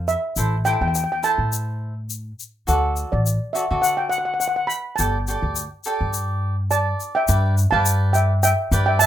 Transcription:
Already playing: upright bass F2, cavaquinho F4 A4 C5
0.08 steel pan E5, shaker
0.36 upright bass A1, cavaquinho E4 A4 C5, shaker
0.65 cavaquinho E4 A4 C5, steel pan G5, shaker
0.74 steel pan G5
0.81 upright bass E2, steel pan G5
0.88 steel pan G5
0.95 steel pan G5, shaker
1.04 steel pan G5
1.12 steel pan G5
1.23 cavaquinho E4 A4 C5, steel pan A5, shaker
1.38 upright bass A2
1.53 shaker
2.10 shaker
2.40 shaker
2.67 upright bass D2, cavaquinho F#4 A4 D5, steel pan F#5, shaker
2.96 shaker
3.12 upright bass A1, steel pan D5
3.26 shaker
3.53 cavaquinho F#4 A4 D5, steel pan E5, shaker
3.71 upright bass D3, cavaquinho F#4 A4 D5
3.82 steel pan F#5, shaker
3.97 steel pan G5
4.10 steel pan F#5, shaker
4.18 steel pan F#5
4.25 steel pan F#5
4.34 steel pan F#5
4.40 steel pan F#5, shaker
4.48 steel pan F#5
4.56 steel pan F#5
4.67 steel pan B5, shaker
4.96 upright bass G1, cavaquinho G4 A4, steel pan A5, shaker
5.00 cavaquinho D5
5.27 cavaquinho G4 A4 D5, shaker
5.42 upright bass D2
5.56 shaker
5.84 cavaquinho G4 A4 D5, shaker
6.01 upright bass G2
6.13 shaker
6.71 steel pan D5 A5, cavaquinho D5, shaker
7.00 shaker
7.15 steel pan E5 G5
7.28 upright bass G2, cavaquinho G4 B4 D5, shaker
7.58 shaker
7.71 upright bass G2, cavaquinho G4 B4 D5, steel pan F5 A5
7.86 shaker
8.13 steel pan E5 G5, shaker
8.43 steel pan E5 G5, shaker
8.71 upright bass G2, cavaquinho G4 B4 D5, shaker
8.86 steel pan E5 G5
8.99 steel pan E5 A5, shaker

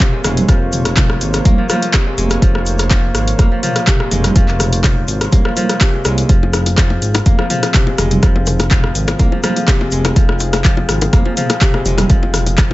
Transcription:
Already playing: kora A#3, analog synth pad A#3 F4 C5 C#5
0.00 kora C3, kick, clap, closed hi-hat, mid tom, shaker
0.13 kora G#3
0.24 analog synth bass F1, kora G#3, cross-stick, open hi-hat, mid tom, shaker
0.37 closed hi-hat, low conga, shaker
0.48 analog synth bass F1, kora F3, kick, cross-stick, closed hi-hat, shaker
0.72 open hi-hat, mid tom, shaker
0.85 cross-stick, closed hi-hat, shaker
0.97 kora F3, kick, clap, closed hi-hat, mid tom, shaker
1.10 cross-stick
1.21 analog synth bass G#1, open hi-hat, shaker
1.34 cross-stick, closed hi-hat, shaker
1.45 analog synth bass C2, kora A#3, kick, closed hi-hat, high conga, low conga, shaker
1.58 kora F3
1.69 kora F3, cross-stick, open hi-hat, high conga, low conga, shaker
1.82 closed hi-hat, shaker
1.93 kora C3, kick, cross-stick, clap, closed hi-hat, shaker
2.06 kora G#3
2.18 analog synth bass F1, kora G#3, open hi-hat, high conga, shaker
2.30 cross-stick, closed hi-hat, high conga, shaker
2.42 analog synth bass F1, kora F3, kick, closed hi-hat, shaker
2.55 cross-stick
2.66 open hi-hat, shaker
2.78 cross-stick, closed hi-hat, shaker
2.90 kora F3, kick, clap, closed hi-hat, shaker
3.15 analog synth bass G#1, cross-stick, open hi-hat, shaker
3.28 closed hi-hat, shaker
3.38 analog synth bass F1, kora A#3, kick, cross-stick, closed hi-hat, high conga, shaker
3.52 kora F3
3.63 kora F3, open hi-hat, mid tom, shaker
3.76 cross-stick, closed hi-hat, shaker
3.87 kora C3, kick, clap, closed hi-hat, mid tom, shaker
4.00 kora G#3, cross-stick
4.11 analog synth bass F1, kora G#3, open hi-hat, mid tom, shaker
4.24 cross-stick, closed hi-hat, low conga, shaker
4.35 analog synth bass F1, kora F3, kick, closed hi-hat, shaker
4.48 clap
4.60 cross-stick, open hi-hat, mid tom, shaker
4.73 closed hi-hat, shaker
4.84 kora F3, kick, cross-stick, clap, closed hi-hat, mid tom, shaker
5.08 analog synth bass G#1, open hi-hat, shaker
5.21 cross-stick, closed hi-hat, shaker
5.32 analog synth bass C2, kora A#3, kick, closed hi-hat, high conga, low conga, shaker
5.45 kora F3, cross-stick
5.56 kora F3, open hi-hat, high conga, low conga, shaker
5.69 cross-stick, closed hi-hat, shaker
5.81 kora C3, kick, clap, closed hi-hat, shaker
5.94 kora G#3
6.05 analog synth bass C2, kora G#3, cross-stick, open hi-hat, high conga, shaker
6.17 closed hi-hat, high conga, shaker
6.29 analog synth bass F1, analog synth pad F3 C4 G#4, kora F3, kick, closed hi-hat, shaker
6.43 low bongo
6.53 cross-stick, open hi-hat, high bongo, shaker
6.66 closed hi-hat, low bongo, shaker
6.78 kora F3, kick, cross-stick, clap, closed hi-hat, shaker
6.90 low bongo
7.02 analog synth bass G#1, open hi-hat, shaker
7.14 cross-stick, closed hi-hat, high bongo, low bongo, shaker
7.26 analog synth bass F1, kora A#3, kick, closed hi-hat, high conga, shaker
7.39 kora F3, cross-stick, low bongo
7.50 kora F3, open hi-hat, mid tom, shaker
7.63 cross-stick, closed hi-hat, low bongo, shaker
7.74 kora C3, kick, clap, closed hi-hat, mid tom, shaker
7.87 kora G#3, low bongo
7.98 analog synth bass F1, kora G#3, cross-stick, open hi-hat, mid tom, shaker
8.11 closed hi-hat, low bongo, low conga, shaker
8.23 analog synth bass F1, kora F3, kick, cross-stick, closed hi-hat, shaker
8.36 low bongo
8.46 open hi-hat, mid tom, high bongo, shaker
8.59 cross-stick, closed hi-hat, low bongo, shaker
8.71 kora F3, kick, clap, closed hi-hat, mid tom, shaker
8.84 cross-stick, low bongo
8.95 analog synth bass G#1, open hi-hat, shaker
9.08 cross-stick, closed hi-hat, high bongo, low bongo, shaker
9.19 analog synth bass C2, kora A#3, kick, closed hi-hat, high conga, low conga, shaker
9.32 kora F3, low bongo
9.43 kora F3, cross-stick, open hi-hat, high conga, low conga, shaker
9.56 closed hi-hat, low bongo, shaker
9.68 kora C3, kick, cross-stick, clap, closed hi-hat, shaker
9.80 kora G#3, low bongo
9.91 analog synth bass F1, kora G#3, open hi-hat, high conga, shaker
10.05 cross-stick, closed hi-hat, high bongo, low bongo, high conga, shaker
10.16 analog synth bass F1, kora F3, kick, closed hi-hat, shaker
10.29 cross-stick, low bongo
10.39 open hi-hat, high bongo, shaker
10.53 cross-stick, closed hi-hat, low bongo, shaker
10.64 kora F3, kick, clap, closed hi-hat, shaker
10.77 low bongo
10.89 analog synth bass G#1, cross-stick, open hi-hat, shaker
11.01 closed hi-hat, high bongo, low bongo, shaker
11.13 analog synth bass F1, kora A#3, kick, cross-stick, closed hi-hat, high conga, shaker
11.25 kora F3, low bongo
11.37 kora F3, open hi-hat, mid tom, shaker
11.49 cross-stick, closed hi-hat, low bongo, shaker
11.61 kora C3, kick, clap, closed hi-hat, mid tom, shaker
11.74 kora G#3, cross-stick, low bongo
11.85 analog synth bass F1, kora G#3, open hi-hat, mid tom, shaker
11.98 cross-stick, closed hi-hat, low bongo, low conga, shaker
12.10 analog synth bass F1, kora F3, kick, closed hi-hat, shaker
12.23 low bongo
12.34 cross-stick, open hi-hat, mid tom, high bongo, shaker
12.46 closed hi-hat, low bongo, shaker
12.58 kora F3, kick, cross-stick, clap, closed hi-hat, mid tom, shaker

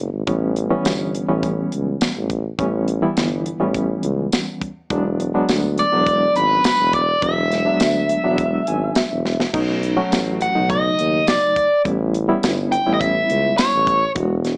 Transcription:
0.00 tuba F#1
0.13 tuba G#1
0.27 tuba A1, reed electric piano E3 G3 B3 C#4, kick, closed hi-hat
0.56 closed hi-hat
0.70 reed electric piano E3 G3 B3 C#4
0.85 tuba G1, snare, closed hi-hat, tambourine
1.15 closed hi-hat
1.28 tuba A1, reed electric piano E3 G3 B3 C#4
1.43 kick, closed hi-hat
1.72 tuba C#2, closed hi-hat
2.01 tuba A1, snare, closed hi-hat, tambourine
2.16 tuba A1
2.30 kick, closed hi-hat
2.58 tuba A1, reed electric piano E3 G3 B3 C#4, kick, closed hi-hat
2.88 closed hi-hat
3.02 reed electric piano E3 G3 B3 E4
3.16 tuba G1, snare, closed hi-hat, tambourine
3.46 closed hi-hat
3.60 tuba A1, reed electric piano E3 G3 B3 C#4
3.74 kick, closed hi-hat
4.03 tuba C#2, closed hi-hat
4.32 tuba A1, snare, closed hi-hat, tambourine
4.61 kick, closed hi-hat
4.90 tuba E1, reed electric piano F#3 G#3 B3 D4, kick, closed hi-hat
5.20 closed hi-hat
5.34 reed electric piano F#3 G#3 B3 D4
5.48 tuba D2, snare, closed hi-hat, tambourine
5.78 overdriven electric guitar D5, closed hi-hat
5.92 tuba E1, reed electric piano F#3 G#3 B3 D4
6.07 kick, closed hi-hat
6.35 tuba G#1, overdriven electric guitar B4, closed hi-hat
6.64 tuba E1, overdriven electric guitar B4, snare, closed hi-hat, tambourine
6.79 tuba E1
6.93 overdriven electric guitar D5, kick, closed hi-hat
7.22 tuba E1, reed electric piano F#3 G#3 B3 D4, overdriven electric guitar E5, kick, closed hi-hat
7.52 snare, closed hi-hat
7.65 reed electric piano F#3 G#3 B3 D4
7.80 tuba D2, snare, closed hi-hat, tambourine
8.09 closed hi-hat
8.24 tuba E1, reed electric piano F#3 G#3 B3 D4
8.38 kick, closed hi-hat
8.67 tuba G#1, reed electric piano G#5, closed hi-hat
8.95 tuba E1, reed electric piano E5, snare, closed hi-hat, tambourine
9.11 tuba E1
9.26 snare
9.40 snare
9.53 tuba B1, reed electric piano F#3 A3 C#4 D#4, kick, closed hi-hat, crash
9.83 closed hi-hat
9.97 reed electric piano F#3 A3 C#4 F#4
10.12 tuba A1, snare, closed hi-hat, tambourine
10.41 overdriven electric guitar F#5, closed hi-hat
10.55 tuba B1, reed electric piano C#3 F#3 A3 D#4
10.70 overdriven electric guitar D#5, kick, closed hi-hat
10.99 tuba D#2, closed hi-hat
11.27 tuba B1, overdriven electric guitar D5, snare, closed hi-hat, tambourine
11.56 kick, closed hi-hat
11.85 tuba A1, reed electric piano G3 B3 C#4 E4, kick, closed hi-hat
12.14 closed hi-hat
12.29 reed electric piano G3 B3 C#4 E4
12.43 tuba G1, snare, closed hi-hat, tambourine
12.72 overdriven electric guitar G5, closed hi-hat
12.86 tuba A1, reed electric piano G3 B3 C#4 E4
12.94 overdriven electric guitar D#5
13.01 overdriven electric guitar E5, kick, closed hi-hat
13.30 tuba C#2, closed hi-hat
13.58 tuba A1, overdriven electric guitar C#5, snare, closed hi-hat, tambourine
13.73 tuba A1
13.87 kick, closed hi-hat
14.15 tuba E1, reed electric piano G#3 B3 D4 F#4, kick, closed hi-hat
14.45 snare, closed hi-hat

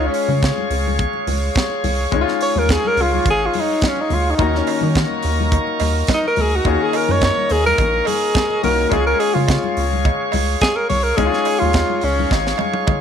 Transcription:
Already playing: grand piano G#3 C#4 F4, tonewheel organ G#4 C#5 F5 C#6
0.06 tenor saxophone C#4
0.14 open hi-hat
0.28 analog synth bass C#3, high conga
0.42 kick, snare, closed hi-hat, muted conga
0.58 muted conga, high conga
0.70 analog synth bass C#2, open hi-hat
0.87 high conga
0.99 kick, closed hi-hat, muted conga, low conga
1.13 muted conga
1.27 analog synth bass C#2, open hi-hat, high conga
1.55 kick, snare, closed hi-hat, muted conga, high conga
1.70 muted conga
1.84 analog synth bass C2, open hi-hat, high conga, low conga
2.12 analog synth bass C#2, grand piano G#3 C#4 D#4, kick, closed hi-hat, muted conga, low conga
2.21 grand piano F4
2.28 snare, muted conga
2.41 tenor saxophone C#5, open hi-hat
2.56 analog synth bass D#2, tenor saxophone A#4, high conga
2.69 tenor saxophone G#4, kick, snare, closed hi-hat, muted conga
2.85 tenor saxophone A#4, muted conga, high conga
2.97 analog synth bass C#2, open hi-hat
3.01 tenor saxophone F4
3.14 high conga
3.25 analog synth bass G#1, kick, closed hi-hat, muted conga, low conga
3.30 tenor saxophone G#4
3.46 tenor saxophone F4
3.54 open hi-hat, high conga
3.60 tenor saxophone D#4
3.81 kick, snare, closed hi-hat, muted conga, high conga
3.88 tenor saxophone C#4
3.97 muted conga
4.01 tenor saxophone D#4
4.10 analog synth bass D2, open hi-hat, high conga, low conga
4.14 tenor saxophone F4
4.30 tenor saxophone D#4
4.38 analog synth bass D#2, grand piano D#3 A#3 C#4 F4 F#4, tonewheel organ A#4 D#5 A#5 C#6, kick, closed hi-hat, cowbell, muted conga, low conga
4.53 snare, muted conga
4.58 tenor saxophone C#4
4.67 open hi-hat, cowbell
4.81 analog synth bass D#3, high conga
4.95 kick, snare, closed hi-hat, cowbell, muted conga
5.10 high conga
5.23 analog synth bass D#2, open hi-hat
5.41 high conga
5.52 kick, closed hi-hat, cowbell, muted conga, low conga
5.67 muted conga
5.80 analog synth bass D#2, open hi-hat, cowbell, high conga
6.07 kick, snare, closed hi-hat, cowbell, high conga
6.14 tenor saxophone D#4
6.24 tenor saxophone A#4, muted conga
6.36 analog synth bass D2, open hi-hat, high conga, low conga
6.41 tenor saxophone G#4
6.56 tenor saxophone F#4
6.64 analog synth bass D#2, grand piano D#3 A#3 C#4 F4 G#4, kick, closed hi-hat, cowbell, low conga
6.83 tenor saxophone G#4
6.93 tenor saxophone A#4, open hi-hat, cowbell
7.08 analog synth bass F#2, tenor saxophone C#5, high conga
7.21 tenor saxophone C#5, kick, snare, closed hi-hat, cowbell
7.37 high conga
7.49 analog synth bass D#2, tenor saxophone G#4, open hi-hat
7.67 tenor saxophone A#4, high conga
7.78 analog synth bass A#1, kick, closed hi-hat, cowbell, muted conga, low conga
7.94 muted conga
8.05 tenor saxophone G#4, open hi-hat, cowbell, high conga
8.35 kick, snare, closed hi-hat, cowbell, muted conga, high conga
8.50 muted conga
8.62 analog synth bass C2, grand piano D#3 A#3 C#4 F4 F#4, tenor saxophone A#4, open hi-hat, high conga, low conga
8.89 analog synth bass C#2, grand piano G#3 C#4 F4, tonewheel organ G#4 C#5 F5, tenor saxophone G#4, kick, closed hi-hat, cowbell
8.93 muted conga, low conga
9.07 tenor saxophone A#4
9.20 tenor saxophone G#4, open hi-hat, cowbell
9.34 analog synth bass C#3, tenor saxophone F4, high conga
9.48 kick, snare, closed hi-hat, cowbell, muted conga
9.64 muted conga, high conga
9.77 analog synth bass C#2, open hi-hat
9.93 high conga
10.05 kick, closed hi-hat, cowbell, muted conga, low conga
10.32 analog synth bass C#2, open hi-hat, cowbell, high conga
10.61 tenor saxophone G#4, kick, snare, closed hi-hat, cowbell, muted conga, high conga
10.76 tenor saxophone A#4
10.89 analog synth bass C2, tenor saxophone C#5, open hi-hat, high conga, low conga
11.03 tenor saxophone A#4
11.17 analog synth bass C#2, grand piano G#3 C#4 D#4, tenor saxophone G#4, kick, closed hi-hat, cowbell, muted conga, low conga
11.26 grand piano F4
11.33 snare, muted conga
11.45 open hi-hat, cowbell
11.59 analog synth bass D#2, tenor saxophone F4, high conga
11.73 kick, snare, closed hi-hat, cowbell
11.90 muted conga, high conga
12.01 analog synth bass C#2, tenor saxophone C#4, open hi-hat
12.19 high conga
12.31 analog synth bass G#1, kick, snare, cowbell, muted conga, low conga
12.47 snare, muted conga
12.58 high tom, cowbell, high conga
12.74 high tom
12.87 kick, mid tom, cowbell, muted conga, high conga

